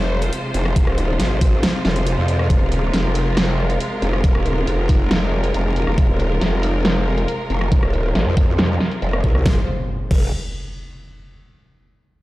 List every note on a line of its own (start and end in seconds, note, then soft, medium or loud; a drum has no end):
0.00 0.31 F1 loud
0.00 9.42 C3 medium
0.00 9.42 G#3 medium
0.00 9.42 F4 medium
0.00 2.46 C5 medium
0.22 closed hi-hat soft
0.33 closed hi-hat medium
0.54 0.74 F1 loud
0.54 closed hi-hat soft
0.65 cross-stick soft
0.76 0.85 F1 medium
0.76 kick loud
0.76 closed hi-hat medium
0.87 1.18 D#1 medium
0.87 cross-stick medium
0.98 closed hi-hat soft
1.20 1.40 G#1 medium
1.20 snare medium
1.20 closed hi-hat medium
1.41 1.61 G#1 medium
1.41 kick loud
1.41 open hi-hat medium
1.63 snare loud
1.63 closed hi-hat medium
1.85 2.16 F1 medium
1.85 snare medium
1.96 closed hi-hat soft
2.07 closed hi-hat medium
2.18 2.48 F2 loud
2.28 closed hi-hat soft
2.39 cross-stick soft
2.50 2.59 F1 medium
2.50 9.42 A#4 medium
2.50 kick loud
2.50 closed hi-hat medium
2.61 2.92 D#1 medium
2.72 closed hi-hat soft
2.93 3.79 F1 loud
2.93 snare medium
2.93 closed hi-hat medium
3.15 open hi-hat medium
3.37 snare loud
3.37 closed hi-hat medium
3.70 closed hi-hat soft
3.80 closed hi-hat medium
4.02 4.22 F1 loud
4.02 closed hi-hat soft
4.13 cross-stick soft
4.24 4.33 F1 loud
4.24 kick loud
4.24 closed hi-hat medium
4.35 4.66 D#1 medium
4.35 cross-stick medium
4.46 closed hi-hat soft
4.67 5.53 F1 medium
4.67 closed hi-hat medium
4.89 kick loud
4.89 open hi-hat medium
5.11 snare loud
5.11 closed hi-hat medium
5.44 closed hi-hat soft
5.54 5.85 F1 loud
5.54 closed hi-hat medium
5.76 closed hi-hat soft
5.87 5.96 F1 loud
5.87 cross-stick medium
5.98 6.07 F1 medium
5.98 kick loud
5.98 closed hi-hat medium
6.09 6.40 D#1 medium
6.20 closed hi-hat soft
6.41 7.27 F1 loud
6.41 snare medium
6.41 closed hi-hat medium
6.63 open hi-hat medium
6.85 snare loud
6.85 closed hi-hat medium
7.18 closed hi-hat soft
7.28 closed hi-hat medium
7.50 7.70 F1 loud
7.50 closed hi-hat soft
7.61 cross-stick medium
7.72 7.81 F1 loud
7.72 kick loud
7.72 closed hi-hat medium
7.83 8.13 D#1 medium
7.83 cross-stick medium
7.93 closed hi-hat medium
8.15 8.24 G#1 loud
8.15 snare medium
8.15 closed hi-hat medium
8.26 8.46 F2 medium
8.37 kick loud
8.37 open hi-hat medium
8.48 8.79 F2 medium
8.59 snare loud
8.59 closed hi-hat medium
8.80 snare medium
8.91 closed hi-hat medium
9.02 9.22 F1 loud
9.02 closed hi-hat medium
9.13 cross-stick medium
9.24 9.44 C2 loud
9.24 kick medium
9.24 closed hi-hat medium
9.35 cross-stick medium
9.46 9.58 F1 medium
9.46 9.66 C3 medium
9.46 9.66 G#3 medium
9.46 9.66 F4 medium
9.46 9.66 C5 medium
9.46 kick loud
9.46 snare medium
9.46 impact medium
10.11 10.31 F1 medium
10.11 kick loud
10.11 crash medium